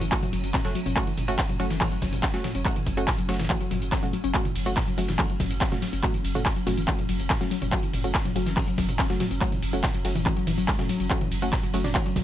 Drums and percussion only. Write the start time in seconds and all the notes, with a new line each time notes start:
0.01 open hi-hat, tambourine
0.12 kick, clap, closed hi-hat, ride, tambourine
0.23 closed hi-hat, mid tom, tambourine
0.33 open hi-hat, ride
0.44 closed hi-hat, tambourine
0.54 kick, snare, clap, closed hi-hat, mid tom, ride, tambourine
0.65 snare, closed hi-hat, tambourine
0.75 open hi-hat, ride
0.86 closed hi-hat, mid tom, tambourine
0.96 kick, clap, closed hi-hat, ride, tambourine
1.07 closed hi-hat, tambourine
1.17 mid tom, open hi-hat, ride
1.28 closed hi-hat, tambourine
1.39 kick, snare, clap, closed hi-hat, ride, tambourine
1.49 closed hi-hat, mid tom, tambourine
1.60 open hi-hat, ride
1.70 snare, closed hi-hat, tambourine
1.81 kick, clap, closed hi-hat, mid tom, open hi-hat, tambourine
1.92 closed hi-hat, tambourine
2.02 kick, snare, open hi-hat, ride
2.13 closed hi-hat, mid tom, ride, tambourine
2.23 kick, snare, clap, closed hi-hat, ride, tambourine
2.34 snare, closed hi-hat, tambourine
2.44 snare, mid tom, open hi-hat, ride
2.55 closed hi-hat, tambourine
2.65 kick, clap, closed hi-hat, ride, tambourine
2.76 closed hi-hat, mid tom, tambourine
2.86 kick, open hi-hat, ride
2.97 closed hi-hat, tambourine
3.08 kick, snare, clap, closed hi-hat, mid tom, ride, tambourine
3.18 closed hi-hat, ride, tambourine
3.29 snare, open hi-hat, ride
3.34 snare, ride
3.39 snare, mid tom, open hi-hat, ride, tambourine
3.45 snare, ride
3.50 kick, clap, closed hi-hat, ride, tambourine
3.61 closed hi-hat, tambourine
3.71 mid tom, open hi-hat, ride
3.82 closed hi-hat, tambourine
3.92 kick, snare, clap, closed hi-hat, ride, tambourine
4.03 closed hi-hat, mid tom, tambourine
4.13 open hi-hat
4.24 closed hi-hat, tambourine
4.34 kick, clap, closed hi-hat, ride, tambourine
4.45 closed hi-hat, mid tom, tambourine
4.55 open hi-hat, ride
4.66 closed hi-hat, tambourine
4.77 kick, snare, clap, closed hi-hat, mid tom, ride, tambourine
4.87 closed hi-hat, tambourine
4.98 open hi-hat, ride
5.08 snare, closed hi-hat, mid tom, tambourine
5.19 kick, clap, closed hi-hat, open hi-hat, tambourine
5.30 closed hi-hat, tambourine
5.40 kick, snare, mid tom, open hi-hat, ride
5.51 closed hi-hat, ride, tambourine
5.61 kick, snare, clap, closed hi-hat, ride, tambourine
5.72 snare, closed hi-hat, mid tom, tambourine
5.82 snare, open hi-hat, ride
5.93 closed hi-hat, tambourine
6.03 kick, clap, closed hi-hat, mid tom, ride, tambourine
6.14 closed hi-hat, tambourine
6.24 open hi-hat, ride
6.35 closed hi-hat, mid tom, tambourine
6.46 kick, snare, clap, closed hi-hat, ride
6.56 closed hi-hat, ride, tambourine
6.67 snare, mid tom, open hi-hat, ride
6.77 open hi-hat, tambourine
6.88 kick, clap, closed hi-hat, ride, tambourine
6.99 closed hi-hat, mid tom, tambourine
7.09 open hi-hat, ride
7.20 closed hi-hat, tambourine
7.30 kick, snare, clap, closed hi-hat, mid tom, ride, tambourine
7.41 snare, closed hi-hat, tambourine
7.51 open hi-hat, ride
7.62 closed hi-hat, mid tom, tambourine
7.72 kick, clap, closed hi-hat, ride, tambourine
7.83 closed hi-hat, tambourine
7.93 mid tom, open hi-hat, ride
8.04 closed hi-hat, tambourine
8.15 kick, snare, clap, closed hi-hat, ride, tambourine
8.25 closed hi-hat, mid tom, tambourine
8.36 open hi-hat, ride
8.46 snare, closed hi-hat, tambourine
8.57 kick, clap, closed hi-hat, mid tom, open hi-hat, tambourine
8.68 closed hi-hat, tambourine
8.78 kick, snare, open hi-hat, ride
8.89 closed hi-hat, mid tom, ride, tambourine
8.99 kick, snare, clap, closed hi-hat, ride, tambourine
9.10 snare, closed hi-hat, tambourine
9.20 snare, mid tom, open hi-hat, ride
9.31 closed hi-hat, tambourine
9.41 kick, clap, closed hi-hat, ride, tambourine
9.52 closed hi-hat, mid tom, tambourine
9.62 open hi-hat, ride
9.73 closed hi-hat, tambourine
9.84 kick, snare, clap, closed hi-hat, mid tom, ride, tambourine
9.94 closed hi-hat, ride, tambourine
10.05 open hi-hat, ride
10.15 mid tom, open hi-hat, tambourine
10.26 kick, clap, closed hi-hat, ride, tambourine
10.37 closed hi-hat, tambourine
10.47 mid tom, open hi-hat, ride
10.58 closed hi-hat, tambourine
10.68 kick, snare, clap, closed hi-hat, ride, tambourine
10.79 snare, closed hi-hat, mid tom, tambourine
10.89 open hi-hat, ride
11.00 closed hi-hat, tambourine
11.10 kick, clap, closed hi-hat, ride, tambourine
11.21 closed hi-hat, mid tom, tambourine
11.32 open hi-hat, ride
11.42 closed hi-hat, tambourine
11.53 kick, snare, clap, closed hi-hat, mid tom, ride, tambourine
11.63 closed hi-hat, tambourine
11.74 open hi-hat, ride
11.84 snare, closed hi-hat, mid tom, tambourine
11.95 kick, clap, closed hi-hat, open hi-hat, tambourine
12.06 closed hi-hat, tambourine
12.16 kick, snare, mid tom, open hi-hat, ride